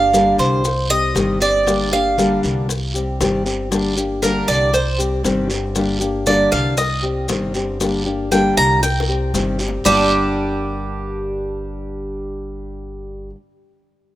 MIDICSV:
0, 0, Header, 1, 6, 480
1, 0, Start_track
1, 0, Key_signature, -2, "minor"
1, 0, Tempo, 511945
1, 1564, Time_signature, 4, 2, 24, 8
1, 13270, End_track
2, 0, Start_track
2, 0, Title_t, "Cuban tres"
2, 0, Program_c, 0, 25
2, 0, Note_on_c, 0, 77, 110
2, 330, Note_off_c, 0, 77, 0
2, 367, Note_on_c, 0, 72, 78
2, 812, Note_off_c, 0, 72, 0
2, 846, Note_on_c, 0, 75, 106
2, 1291, Note_off_c, 0, 75, 0
2, 1329, Note_on_c, 0, 74, 94
2, 1773, Note_off_c, 0, 74, 0
2, 1808, Note_on_c, 0, 77, 91
2, 2252, Note_off_c, 0, 77, 0
2, 3961, Note_on_c, 0, 70, 80
2, 4194, Note_off_c, 0, 70, 0
2, 4200, Note_on_c, 0, 74, 102
2, 4433, Note_off_c, 0, 74, 0
2, 4442, Note_on_c, 0, 72, 83
2, 4674, Note_off_c, 0, 72, 0
2, 5876, Note_on_c, 0, 74, 85
2, 6109, Note_off_c, 0, 74, 0
2, 6112, Note_on_c, 0, 77, 102
2, 6348, Note_off_c, 0, 77, 0
2, 6352, Note_on_c, 0, 75, 82
2, 6589, Note_off_c, 0, 75, 0
2, 7798, Note_on_c, 0, 79, 83
2, 8032, Note_off_c, 0, 79, 0
2, 8039, Note_on_c, 0, 82, 118
2, 8272, Note_off_c, 0, 82, 0
2, 8278, Note_on_c, 0, 79, 92
2, 8422, Note_off_c, 0, 79, 0
2, 9236, Note_on_c, 0, 55, 90
2, 9244, Note_on_c, 0, 62, 68
2, 9246, Note_on_c, 0, 67, 91
2, 12460, Note_off_c, 0, 55, 0
2, 12464, Note_off_c, 0, 62, 0
2, 12469, Note_off_c, 0, 67, 0
2, 13270, End_track
3, 0, Start_track
3, 0, Title_t, "Steel-string acoustic guitar"
3, 0, Program_c, 1, 25
3, 0, Note_on_c, 1, 58, 43
3, 0, Note_on_c, 1, 62, 55
3, 0, Note_on_c, 1, 67, 50
3, 115, Note_off_c, 1, 67, 0
3, 116, Note_off_c, 1, 58, 0
3, 120, Note_off_c, 1, 62, 0
3, 121, Note_on_c, 1, 50, 80
3, 127, Note_on_c, 1, 55, 80
3, 127, Note_on_c, 1, 58, 86
3, 132, Note_on_c, 1, 62, 95
3, 137, Note_on_c, 1, 67, 75
3, 593, Note_off_c, 1, 50, 0
3, 596, Note_off_c, 1, 55, 0
3, 596, Note_off_c, 1, 58, 0
3, 598, Note_off_c, 1, 62, 0
3, 601, Note_off_c, 1, 67, 0
3, 843, Note_on_c, 1, 67, 55
3, 850, Note_on_c, 1, 60, 46
3, 856, Note_on_c, 1, 55, 46
3, 1071, Note_off_c, 1, 55, 0
3, 1073, Note_on_c, 1, 48, 71
3, 1074, Note_off_c, 1, 60, 0
3, 1074, Note_off_c, 1, 67, 0
3, 1076, Note_on_c, 1, 51, 77
3, 1082, Note_on_c, 1, 55, 80
3, 1085, Note_on_c, 1, 60, 67
3, 1090, Note_on_c, 1, 67, 89
3, 1304, Note_off_c, 1, 67, 0
3, 1309, Note_off_c, 1, 48, 0
3, 1310, Note_off_c, 1, 51, 0
3, 1313, Note_off_c, 1, 55, 0
3, 1315, Note_off_c, 1, 60, 0
3, 1315, Note_on_c, 1, 67, 58
3, 1324, Note_on_c, 1, 60, 51
3, 1328, Note_on_c, 1, 55, 40
3, 1547, Note_off_c, 1, 55, 0
3, 1550, Note_off_c, 1, 67, 0
3, 1554, Note_off_c, 1, 60, 0
3, 1555, Note_on_c, 1, 50, 62
3, 1558, Note_on_c, 1, 55, 69
3, 1566, Note_on_c, 1, 58, 76
3, 1567, Note_on_c, 1, 62, 81
3, 1570, Note_on_c, 1, 67, 69
3, 1786, Note_off_c, 1, 67, 0
3, 1790, Note_off_c, 1, 50, 0
3, 1791, Note_off_c, 1, 55, 0
3, 1793, Note_off_c, 1, 62, 0
3, 1795, Note_off_c, 1, 58, 0
3, 1797, Note_on_c, 1, 67, 56
3, 1804, Note_on_c, 1, 62, 45
3, 1811, Note_on_c, 1, 58, 42
3, 2031, Note_off_c, 1, 67, 0
3, 2034, Note_off_c, 1, 62, 0
3, 2035, Note_off_c, 1, 58, 0
3, 2035, Note_on_c, 1, 50, 79
3, 2043, Note_on_c, 1, 55, 79
3, 2047, Note_on_c, 1, 58, 85
3, 2050, Note_on_c, 1, 62, 84
3, 2053, Note_on_c, 1, 67, 73
3, 2509, Note_off_c, 1, 50, 0
3, 2513, Note_off_c, 1, 55, 0
3, 2515, Note_off_c, 1, 58, 0
3, 2517, Note_off_c, 1, 62, 0
3, 2518, Note_off_c, 1, 67, 0
3, 2757, Note_on_c, 1, 67, 49
3, 2770, Note_on_c, 1, 60, 45
3, 2776, Note_on_c, 1, 55, 43
3, 2990, Note_off_c, 1, 67, 0
3, 2996, Note_off_c, 1, 60, 0
3, 2999, Note_off_c, 1, 55, 0
3, 3001, Note_on_c, 1, 48, 72
3, 3006, Note_on_c, 1, 51, 74
3, 3011, Note_on_c, 1, 55, 80
3, 3014, Note_on_c, 1, 60, 81
3, 3016, Note_on_c, 1, 67, 84
3, 3223, Note_off_c, 1, 67, 0
3, 3230, Note_off_c, 1, 60, 0
3, 3232, Note_off_c, 1, 48, 0
3, 3234, Note_off_c, 1, 55, 0
3, 3234, Note_on_c, 1, 67, 54
3, 3235, Note_off_c, 1, 51, 0
3, 3241, Note_on_c, 1, 60, 46
3, 3245, Note_on_c, 1, 55, 47
3, 3466, Note_off_c, 1, 55, 0
3, 3468, Note_off_c, 1, 67, 0
3, 3472, Note_off_c, 1, 60, 0
3, 3477, Note_on_c, 1, 55, 75
3, 3479, Note_on_c, 1, 50, 63
3, 3483, Note_on_c, 1, 58, 72
3, 3488, Note_on_c, 1, 62, 77
3, 3489, Note_on_c, 1, 67, 79
3, 3705, Note_off_c, 1, 67, 0
3, 3710, Note_off_c, 1, 55, 0
3, 3711, Note_off_c, 1, 50, 0
3, 3711, Note_off_c, 1, 62, 0
3, 3713, Note_off_c, 1, 58, 0
3, 3717, Note_on_c, 1, 67, 51
3, 3722, Note_on_c, 1, 62, 43
3, 3730, Note_on_c, 1, 58, 43
3, 3950, Note_off_c, 1, 67, 0
3, 3952, Note_off_c, 1, 62, 0
3, 3953, Note_off_c, 1, 58, 0
3, 3960, Note_on_c, 1, 50, 81
3, 3961, Note_on_c, 1, 55, 68
3, 3964, Note_on_c, 1, 58, 79
3, 3970, Note_on_c, 1, 62, 83
3, 3973, Note_on_c, 1, 67, 90
3, 4424, Note_off_c, 1, 55, 0
3, 4425, Note_off_c, 1, 67, 0
3, 4429, Note_off_c, 1, 50, 0
3, 4431, Note_off_c, 1, 58, 0
3, 4431, Note_off_c, 1, 62, 0
3, 4672, Note_on_c, 1, 67, 54
3, 4680, Note_on_c, 1, 60, 49
3, 4688, Note_on_c, 1, 55, 46
3, 4905, Note_off_c, 1, 55, 0
3, 4907, Note_off_c, 1, 67, 0
3, 4907, Note_on_c, 1, 48, 71
3, 4911, Note_off_c, 1, 60, 0
3, 4914, Note_on_c, 1, 51, 76
3, 4916, Note_on_c, 1, 55, 89
3, 4921, Note_on_c, 1, 60, 80
3, 4923, Note_on_c, 1, 67, 85
3, 5140, Note_off_c, 1, 67, 0
3, 5144, Note_off_c, 1, 48, 0
3, 5146, Note_off_c, 1, 60, 0
3, 5148, Note_off_c, 1, 51, 0
3, 5149, Note_off_c, 1, 55, 0
3, 5151, Note_on_c, 1, 67, 49
3, 5166, Note_on_c, 1, 55, 46
3, 5386, Note_off_c, 1, 67, 0
3, 5390, Note_off_c, 1, 55, 0
3, 5393, Note_on_c, 1, 50, 66
3, 5401, Note_on_c, 1, 55, 69
3, 5402, Note_on_c, 1, 58, 70
3, 5406, Note_on_c, 1, 62, 80
3, 5407, Note_on_c, 1, 67, 76
3, 5615, Note_off_c, 1, 67, 0
3, 5626, Note_off_c, 1, 62, 0
3, 5626, Note_on_c, 1, 67, 48
3, 5627, Note_off_c, 1, 50, 0
3, 5631, Note_off_c, 1, 55, 0
3, 5632, Note_off_c, 1, 58, 0
3, 5637, Note_on_c, 1, 62, 53
3, 5643, Note_on_c, 1, 58, 42
3, 5864, Note_off_c, 1, 67, 0
3, 5866, Note_off_c, 1, 58, 0
3, 5869, Note_off_c, 1, 62, 0
3, 5871, Note_on_c, 1, 50, 82
3, 5871, Note_on_c, 1, 55, 77
3, 5877, Note_on_c, 1, 58, 77
3, 5879, Note_on_c, 1, 62, 90
3, 5886, Note_on_c, 1, 67, 94
3, 6346, Note_off_c, 1, 50, 0
3, 6346, Note_off_c, 1, 55, 0
3, 6346, Note_off_c, 1, 67, 0
3, 6349, Note_off_c, 1, 58, 0
3, 6350, Note_off_c, 1, 62, 0
3, 6587, Note_on_c, 1, 67, 52
3, 6593, Note_on_c, 1, 60, 49
3, 6602, Note_on_c, 1, 55, 47
3, 6819, Note_off_c, 1, 55, 0
3, 6824, Note_off_c, 1, 67, 0
3, 6825, Note_on_c, 1, 48, 69
3, 6827, Note_off_c, 1, 60, 0
3, 6830, Note_on_c, 1, 55, 80
3, 6831, Note_on_c, 1, 51, 79
3, 6837, Note_on_c, 1, 60, 77
3, 6840, Note_on_c, 1, 67, 72
3, 7063, Note_off_c, 1, 48, 0
3, 7064, Note_off_c, 1, 67, 0
3, 7066, Note_off_c, 1, 51, 0
3, 7066, Note_off_c, 1, 55, 0
3, 7069, Note_off_c, 1, 60, 0
3, 7075, Note_on_c, 1, 67, 49
3, 7083, Note_on_c, 1, 60, 54
3, 7093, Note_on_c, 1, 55, 45
3, 7302, Note_off_c, 1, 55, 0
3, 7308, Note_off_c, 1, 67, 0
3, 7311, Note_on_c, 1, 50, 59
3, 7312, Note_off_c, 1, 60, 0
3, 7314, Note_on_c, 1, 55, 73
3, 7318, Note_on_c, 1, 58, 74
3, 7323, Note_on_c, 1, 62, 68
3, 7324, Note_on_c, 1, 67, 80
3, 7539, Note_off_c, 1, 67, 0
3, 7544, Note_off_c, 1, 62, 0
3, 7546, Note_off_c, 1, 50, 0
3, 7547, Note_off_c, 1, 55, 0
3, 7550, Note_off_c, 1, 58, 0
3, 7550, Note_on_c, 1, 67, 57
3, 7555, Note_on_c, 1, 62, 47
3, 7564, Note_on_c, 1, 58, 42
3, 7786, Note_off_c, 1, 67, 0
3, 7788, Note_off_c, 1, 62, 0
3, 7790, Note_off_c, 1, 58, 0
3, 7792, Note_on_c, 1, 50, 80
3, 7794, Note_on_c, 1, 55, 86
3, 7801, Note_on_c, 1, 58, 87
3, 7803, Note_on_c, 1, 62, 78
3, 7808, Note_on_c, 1, 67, 87
3, 8265, Note_off_c, 1, 55, 0
3, 8266, Note_off_c, 1, 50, 0
3, 8268, Note_off_c, 1, 67, 0
3, 8271, Note_off_c, 1, 58, 0
3, 8272, Note_off_c, 1, 62, 0
3, 8514, Note_on_c, 1, 67, 50
3, 8523, Note_on_c, 1, 60, 49
3, 8524, Note_on_c, 1, 55, 43
3, 8748, Note_off_c, 1, 67, 0
3, 8750, Note_off_c, 1, 55, 0
3, 8752, Note_off_c, 1, 60, 0
3, 8756, Note_on_c, 1, 48, 64
3, 8759, Note_on_c, 1, 51, 78
3, 8762, Note_on_c, 1, 55, 74
3, 8764, Note_on_c, 1, 60, 77
3, 8765, Note_on_c, 1, 67, 78
3, 8983, Note_off_c, 1, 67, 0
3, 8988, Note_off_c, 1, 48, 0
3, 8990, Note_off_c, 1, 51, 0
3, 8991, Note_off_c, 1, 55, 0
3, 8992, Note_off_c, 1, 60, 0
3, 8994, Note_on_c, 1, 67, 52
3, 9002, Note_on_c, 1, 60, 53
3, 9009, Note_on_c, 1, 55, 48
3, 9228, Note_off_c, 1, 67, 0
3, 9230, Note_off_c, 1, 55, 0
3, 9232, Note_off_c, 1, 60, 0
3, 9232, Note_on_c, 1, 43, 64
3, 9235, Note_on_c, 1, 50, 65
3, 9241, Note_on_c, 1, 55, 72
3, 9242, Note_on_c, 1, 58, 63
3, 9247, Note_on_c, 1, 62, 75
3, 9253, Note_on_c, 1, 67, 65
3, 12513, Note_off_c, 1, 43, 0
3, 12517, Note_off_c, 1, 50, 0
3, 12523, Note_off_c, 1, 55, 0
3, 12524, Note_off_c, 1, 58, 0
3, 12529, Note_off_c, 1, 62, 0
3, 12534, Note_off_c, 1, 67, 0
3, 13270, End_track
4, 0, Start_track
4, 0, Title_t, "Upright bass"
4, 0, Program_c, 2, 32
4, 0, Note_on_c, 2, 31, 93
4, 304, Note_off_c, 2, 31, 0
4, 357, Note_on_c, 2, 36, 89
4, 1043, Note_off_c, 2, 36, 0
4, 1084, Note_on_c, 2, 31, 95
4, 2221, Note_off_c, 2, 31, 0
4, 2288, Note_on_c, 2, 36, 91
4, 2967, Note_off_c, 2, 36, 0
4, 3004, Note_on_c, 2, 31, 98
4, 4141, Note_off_c, 2, 31, 0
4, 4202, Note_on_c, 2, 36, 87
4, 4884, Note_off_c, 2, 36, 0
4, 4914, Note_on_c, 2, 31, 89
4, 6055, Note_off_c, 2, 31, 0
4, 6115, Note_on_c, 2, 36, 86
4, 6800, Note_off_c, 2, 36, 0
4, 6840, Note_on_c, 2, 31, 91
4, 7979, Note_off_c, 2, 31, 0
4, 8039, Note_on_c, 2, 36, 87
4, 8722, Note_off_c, 2, 36, 0
4, 8754, Note_on_c, 2, 31, 93
4, 9181, Note_off_c, 2, 31, 0
4, 9242, Note_on_c, 2, 31, 93
4, 12464, Note_off_c, 2, 31, 0
4, 13270, End_track
5, 0, Start_track
5, 0, Title_t, "Muted steel-string acoustic guitar strokes"
5, 608, Note_on_c, 9, 29, 56
5, 702, Note_off_c, 9, 29, 0
5, 2526, Note_on_c, 9, 29, 62
5, 2619, Note_off_c, 9, 29, 0
5, 4433, Note_on_c, 9, 29, 65
5, 4527, Note_off_c, 9, 29, 0
5, 6354, Note_on_c, 9, 29, 58
5, 6448, Note_off_c, 9, 29, 0
5, 8274, Note_on_c, 9, 29, 66
5, 8368, Note_off_c, 9, 29, 0
5, 13270, End_track
6, 0, Start_track
6, 0, Title_t, "Drums"
6, 126, Note_on_c, 9, 73, 71
6, 131, Note_on_c, 9, 60, 60
6, 132, Note_on_c, 9, 70, 76
6, 220, Note_off_c, 9, 73, 0
6, 225, Note_off_c, 9, 60, 0
6, 226, Note_off_c, 9, 70, 0
6, 361, Note_on_c, 9, 73, 72
6, 371, Note_on_c, 9, 70, 30
6, 455, Note_off_c, 9, 73, 0
6, 465, Note_off_c, 9, 70, 0
6, 601, Note_on_c, 9, 74, 74
6, 605, Note_on_c, 9, 70, 71
6, 610, Note_on_c, 9, 60, 68
6, 695, Note_off_c, 9, 74, 0
6, 699, Note_off_c, 9, 70, 0
6, 704, Note_off_c, 9, 60, 0
6, 845, Note_on_c, 9, 70, 61
6, 849, Note_on_c, 9, 60, 40
6, 939, Note_off_c, 9, 70, 0
6, 943, Note_off_c, 9, 60, 0
6, 1077, Note_on_c, 9, 73, 66
6, 1085, Note_on_c, 9, 60, 76
6, 1085, Note_on_c, 9, 61, 87
6, 1090, Note_on_c, 9, 70, 69
6, 1171, Note_off_c, 9, 73, 0
6, 1179, Note_off_c, 9, 60, 0
6, 1179, Note_off_c, 9, 61, 0
6, 1184, Note_off_c, 9, 70, 0
6, 1318, Note_on_c, 9, 73, 69
6, 1327, Note_on_c, 9, 60, 36
6, 1329, Note_on_c, 9, 70, 31
6, 1411, Note_off_c, 9, 73, 0
6, 1421, Note_off_c, 9, 60, 0
6, 1423, Note_off_c, 9, 70, 0
6, 1562, Note_on_c, 9, 74, 77
6, 1569, Note_on_c, 9, 60, 76
6, 1572, Note_on_c, 9, 70, 73
6, 1656, Note_off_c, 9, 74, 0
6, 1662, Note_off_c, 9, 60, 0
6, 1666, Note_off_c, 9, 70, 0
6, 1807, Note_on_c, 9, 60, 33
6, 1901, Note_off_c, 9, 60, 0
6, 2044, Note_on_c, 9, 73, 72
6, 2050, Note_on_c, 9, 60, 59
6, 2053, Note_on_c, 9, 70, 75
6, 2138, Note_off_c, 9, 73, 0
6, 2143, Note_off_c, 9, 60, 0
6, 2147, Note_off_c, 9, 70, 0
6, 2281, Note_on_c, 9, 73, 75
6, 2288, Note_on_c, 9, 60, 38
6, 2293, Note_on_c, 9, 70, 30
6, 2375, Note_off_c, 9, 73, 0
6, 2382, Note_off_c, 9, 60, 0
6, 2387, Note_off_c, 9, 70, 0
6, 2522, Note_on_c, 9, 74, 69
6, 2523, Note_on_c, 9, 60, 58
6, 2533, Note_on_c, 9, 70, 78
6, 2616, Note_off_c, 9, 74, 0
6, 2617, Note_off_c, 9, 60, 0
6, 2626, Note_off_c, 9, 70, 0
6, 2770, Note_on_c, 9, 70, 61
6, 2864, Note_off_c, 9, 70, 0
6, 3006, Note_on_c, 9, 60, 77
6, 3006, Note_on_c, 9, 61, 86
6, 3006, Note_on_c, 9, 73, 73
6, 3011, Note_on_c, 9, 70, 76
6, 3100, Note_off_c, 9, 60, 0
6, 3100, Note_off_c, 9, 61, 0
6, 3100, Note_off_c, 9, 73, 0
6, 3104, Note_off_c, 9, 70, 0
6, 3242, Note_on_c, 9, 73, 77
6, 3247, Note_on_c, 9, 60, 39
6, 3250, Note_on_c, 9, 70, 30
6, 3336, Note_off_c, 9, 73, 0
6, 3341, Note_off_c, 9, 60, 0
6, 3344, Note_off_c, 9, 70, 0
6, 3485, Note_on_c, 9, 74, 76
6, 3486, Note_on_c, 9, 60, 76
6, 3488, Note_on_c, 9, 70, 75
6, 3579, Note_off_c, 9, 74, 0
6, 3580, Note_off_c, 9, 60, 0
6, 3582, Note_off_c, 9, 70, 0
6, 3727, Note_on_c, 9, 60, 35
6, 3727, Note_on_c, 9, 70, 61
6, 3821, Note_off_c, 9, 60, 0
6, 3821, Note_off_c, 9, 70, 0
6, 3959, Note_on_c, 9, 73, 76
6, 3964, Note_on_c, 9, 60, 65
6, 3971, Note_on_c, 9, 70, 69
6, 4052, Note_off_c, 9, 73, 0
6, 4058, Note_off_c, 9, 60, 0
6, 4065, Note_off_c, 9, 70, 0
6, 4196, Note_on_c, 9, 73, 83
6, 4203, Note_on_c, 9, 70, 31
6, 4290, Note_off_c, 9, 73, 0
6, 4297, Note_off_c, 9, 70, 0
6, 4437, Note_on_c, 9, 74, 71
6, 4440, Note_on_c, 9, 60, 64
6, 4449, Note_on_c, 9, 70, 75
6, 4531, Note_off_c, 9, 74, 0
6, 4534, Note_off_c, 9, 60, 0
6, 4542, Note_off_c, 9, 70, 0
6, 4682, Note_on_c, 9, 60, 42
6, 4687, Note_on_c, 9, 70, 63
6, 4776, Note_off_c, 9, 60, 0
6, 4781, Note_off_c, 9, 70, 0
6, 4917, Note_on_c, 9, 73, 66
6, 4919, Note_on_c, 9, 60, 66
6, 4919, Note_on_c, 9, 61, 87
6, 4924, Note_on_c, 9, 70, 70
6, 5011, Note_off_c, 9, 73, 0
6, 5013, Note_off_c, 9, 60, 0
6, 5013, Note_off_c, 9, 61, 0
6, 5018, Note_off_c, 9, 70, 0
6, 5154, Note_on_c, 9, 73, 76
6, 5160, Note_on_c, 9, 60, 38
6, 5164, Note_on_c, 9, 70, 29
6, 5248, Note_off_c, 9, 73, 0
6, 5254, Note_off_c, 9, 60, 0
6, 5258, Note_off_c, 9, 70, 0
6, 5390, Note_on_c, 9, 74, 76
6, 5397, Note_on_c, 9, 60, 72
6, 5397, Note_on_c, 9, 70, 72
6, 5483, Note_off_c, 9, 74, 0
6, 5490, Note_off_c, 9, 70, 0
6, 5491, Note_off_c, 9, 60, 0
6, 5635, Note_on_c, 9, 70, 55
6, 5638, Note_on_c, 9, 60, 35
6, 5729, Note_off_c, 9, 70, 0
6, 5732, Note_off_c, 9, 60, 0
6, 5872, Note_on_c, 9, 73, 75
6, 5873, Note_on_c, 9, 70, 79
6, 5878, Note_on_c, 9, 60, 62
6, 5966, Note_off_c, 9, 73, 0
6, 5967, Note_off_c, 9, 70, 0
6, 5972, Note_off_c, 9, 60, 0
6, 6108, Note_on_c, 9, 73, 78
6, 6112, Note_on_c, 9, 70, 30
6, 6118, Note_on_c, 9, 60, 37
6, 6202, Note_off_c, 9, 73, 0
6, 6206, Note_off_c, 9, 70, 0
6, 6211, Note_off_c, 9, 60, 0
6, 6350, Note_on_c, 9, 70, 80
6, 6352, Note_on_c, 9, 74, 75
6, 6357, Note_on_c, 9, 60, 65
6, 6443, Note_off_c, 9, 70, 0
6, 6446, Note_off_c, 9, 74, 0
6, 6451, Note_off_c, 9, 60, 0
6, 6830, Note_on_c, 9, 73, 67
6, 6831, Note_on_c, 9, 70, 72
6, 6838, Note_on_c, 9, 60, 73
6, 6838, Note_on_c, 9, 61, 88
6, 6923, Note_off_c, 9, 73, 0
6, 6925, Note_off_c, 9, 70, 0
6, 6932, Note_off_c, 9, 60, 0
6, 6932, Note_off_c, 9, 61, 0
6, 7071, Note_on_c, 9, 73, 72
6, 7074, Note_on_c, 9, 70, 34
6, 7078, Note_on_c, 9, 60, 36
6, 7165, Note_off_c, 9, 73, 0
6, 7168, Note_off_c, 9, 70, 0
6, 7171, Note_off_c, 9, 60, 0
6, 7314, Note_on_c, 9, 74, 73
6, 7317, Note_on_c, 9, 70, 79
6, 7323, Note_on_c, 9, 60, 80
6, 7408, Note_off_c, 9, 74, 0
6, 7411, Note_off_c, 9, 70, 0
6, 7416, Note_off_c, 9, 60, 0
6, 7563, Note_on_c, 9, 60, 32
6, 7657, Note_off_c, 9, 60, 0
6, 7795, Note_on_c, 9, 73, 69
6, 7800, Note_on_c, 9, 60, 63
6, 7802, Note_on_c, 9, 70, 79
6, 7888, Note_off_c, 9, 73, 0
6, 7893, Note_off_c, 9, 60, 0
6, 7896, Note_off_c, 9, 70, 0
6, 8037, Note_on_c, 9, 73, 75
6, 8039, Note_on_c, 9, 70, 33
6, 8130, Note_off_c, 9, 73, 0
6, 8133, Note_off_c, 9, 70, 0
6, 8278, Note_on_c, 9, 74, 70
6, 8279, Note_on_c, 9, 60, 84
6, 8283, Note_on_c, 9, 70, 70
6, 8372, Note_off_c, 9, 74, 0
6, 8373, Note_off_c, 9, 60, 0
6, 8377, Note_off_c, 9, 70, 0
6, 8439, Note_on_c, 9, 60, 85
6, 8533, Note_off_c, 9, 60, 0
6, 8757, Note_on_c, 9, 73, 72
6, 8758, Note_on_c, 9, 61, 105
6, 8763, Note_on_c, 9, 70, 74
6, 8851, Note_off_c, 9, 73, 0
6, 8852, Note_off_c, 9, 61, 0
6, 8857, Note_off_c, 9, 70, 0
6, 8989, Note_on_c, 9, 73, 78
6, 9002, Note_on_c, 9, 70, 34
6, 9079, Note_on_c, 9, 61, 83
6, 9083, Note_off_c, 9, 73, 0
6, 9095, Note_off_c, 9, 70, 0
6, 9173, Note_off_c, 9, 61, 0
6, 9228, Note_on_c, 9, 74, 102
6, 9241, Note_on_c, 9, 61, 107
6, 9242, Note_on_c, 9, 70, 104
6, 9322, Note_off_c, 9, 74, 0
6, 9335, Note_off_c, 9, 61, 0
6, 9336, Note_off_c, 9, 70, 0
6, 13270, End_track
0, 0, End_of_file